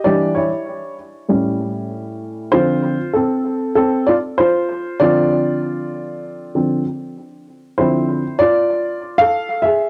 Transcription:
0.04 0.48 E3 medium
0.04 0.48 G3 soft
0.04 0.49 D4 medium
0.04 0.35 G4 medium
0.04 0.37 D5 medium
0.35 0.95 E4 medium
0.35 0.93 C#5 medium
1.29 2.49 A2 medium
1.29 2.49 G3 medium
1.29 2.49 C#4 medium
2.52 2.96 D3 medium
2.52 2.96 F3 medium
2.52 2.96 C4 medium
2.52 3.11 F4 medium
2.52 3.10 C5 medium
3.13 3.73 C4 medium
3.13 3.74 A4 medium
3.75 4.06 C4 medium
3.75 4.08 A4 medium
4.07 4.16 F4 medium
4.07 4.14 D5 medium
4.38 4.97 F4 medium
4.38 5.02 C5 medium
5.00 6.53 D3 medium
5.00 6.54 F3 soft
5.00 6.54 C4 medium
5.00 6.83 F4 medium
5.00 6.82 D5 loud
6.55 6.83 D3 soft
6.55 6.83 F3 soft
6.55 6.83 C4 soft
7.78 8.22 D3 soft
7.78 8.22 F3 soft
7.78 8.22 C4 medium
7.78 8.37 E4 medium
7.78 8.42 C5 medium
8.39 9.17 F4 medium
8.39 9.22 D5 loud
9.18 9.62 A4 medium
9.18 9.64 F5 loud
9.62 9.90 G#4 medium
9.62 9.90 E5 medium

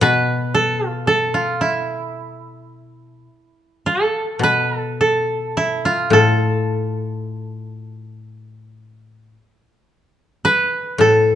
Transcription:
0.01 3.26 B2 medium
0.01 1.80 B4 medium
0.54 0.88 A4 medium
0.88 1.07 F4 medium
1.07 2.98 A4 medium
1.34 1.67 F4 medium
1.61 3.87 E4 medium
3.86 4.77 A4 medium
4.39 6.12 B2 soft
4.43 4.77 B4 medium
4.77 5.01 A4 medium
5.01 6.13 A4 medium
5.57 5.91 E4 medium
5.85 8.04 F4 medium
6.10 9.34 A2 soft
6.10 8.24 A4 medium
10.45 11.35 B4 medium
10.98 11.35 A2 soft
10.98 11.35 A4 medium

